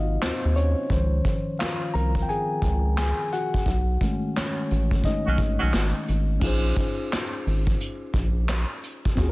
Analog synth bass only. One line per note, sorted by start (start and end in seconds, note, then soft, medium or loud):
0.00 0.18 G#1 loud
0.24 0.32 D#2 soft
0.45 0.75 D#2 medium
0.91 1.21 C#2 loud
1.95 2.25 C2 loud
2.63 3.13 C#2 loud
3.67 3.97 B1 loud
4.71 5.01 A1 medium
5.27 5.38 B1 medium
5.39 5.58 G#1 loud
5.62 5.73 B1 medium
5.75 5.93 G#1 medium
6.09 6.39 G#1 medium
6.42 6.73 A#1 loud
7.47 7.77 G#1 medium
8.15 8.65 A#1 loud
9.18 9.32 D#2 loud